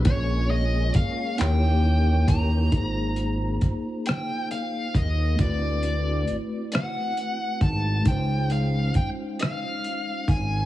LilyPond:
<<
  \new Staff \with { instrumentName = "Lead electric guitar" } { \time 6/8 \key aes \major \tempo 4. = 45 des''8 ees''8 f''8 g''4 bes''8~ | bes''4. g''8 f''8 ees''8 | d''4 r8 fis''4 a''8 | g''8 f''8 g''8 f''4 aes''8 | }
  \new Staff \with { instrumentName = "Tine electric piano" } { \time 6/8 \key aes \major <bes c' des' f' aes' des''>4. <bes ees' fes' g' des''>4. | <bes ees' f' aes' c''>2. | <a c' e' fis' b'>2. | <aes des' ees' f' c''>2. | }
  \new Staff \with { instrumentName = "Tonewheel organ" } { \time 6/8 \key aes \major <aes bes des'>4. <ees fes des' g'>4. | r2. | r2. | r2. | }
  \new Staff \with { instrumentName = "Analog synth bass" } { \clef bass \time 6/8 \key aes \major bes,,4 ees,8 ees,4 ees,8 | aes,,4 ees,8 r4 ees,8 | d,4 aes,,8 r4 aes,,8 | des,4 aes,,8 r4 aes,,8 | }
  \new DrumStaff \with { instrumentName = "Drums" } \drummode { \time 6/8 <hh bd>4 <hh bd>8 <hc hh>4 <hh bd>8 | <hh bd>8 hh8 <hh bd>8 <hh ss>8 hh8 <hh bd>8 | <hh bd>8 hh8 hh8 <hh ss>8 hh8 <hh bd>8 | <hh bd>8 hh8 <hh bd>8 <hh ss>8 hh8 <hh bd>8 | }
>>